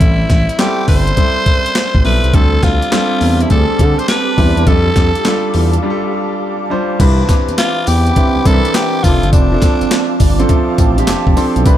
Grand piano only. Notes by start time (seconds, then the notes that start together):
Already playing: G3 C4 E4 A4
0.58 G3 C4 E4 A4
1.17 G3 C4 E4 A4
2.04 G3 C4 E4 A4
2.33 G3 C4 D4 A4
2.91 G3 C4 D4 A4
3.50 G3 C4 D4 G#4
3.57 A4
4.37 G3 C4 D4 E4
4.66 G3 D4 F4 A4
5.24 G3 D4 F4 A4
5.83 G3 D4 F4 G4
5.90 A4
6.70 G3 D4 F4 C5
6.99 E3 C4 D4 B4
8.16 E3 C4 D4 B4
8.45 E3 C4 D4 A#4
8.53 B4
9.03 F3 C4 D4 A4
9.52 F3 C4 D4 A4
10.20 D5
10.39 F3 C4 D4 A4
10.49 F3 C4 D4 A4 E5
10.69 F5
10.79 G5
10.98 F3 C4 D4 G4
11.08 A5
11.36 F3 C4 D4 A4 C6
11.65 E3 C4 D4 B4